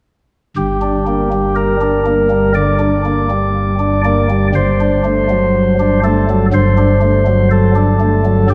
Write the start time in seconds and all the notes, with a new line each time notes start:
0.57 G1 G2 G4
0.81 D4
1.07 A#3
1.32 G3
1.56 A#4
1.81 D4
2.06 A#3
2.30 G3
2.55 D3 D5
2.79 D4
3.05 A#3
3.30 G3
3.79 D4
4.04 A#3 D5
4.30 G3
4.55 G1 G2 C5
4.80 D4
5.05 A3
5.30 F#3
5.80 D4
6.04 A3 A4
6.30 F#3
6.53 G1 G2 C5
6.78 D4
7.02 A3
7.27 F#3
7.51 A4
7.76 D4
8.00 A3
8.25 F#3
8.50 G1 G2 G4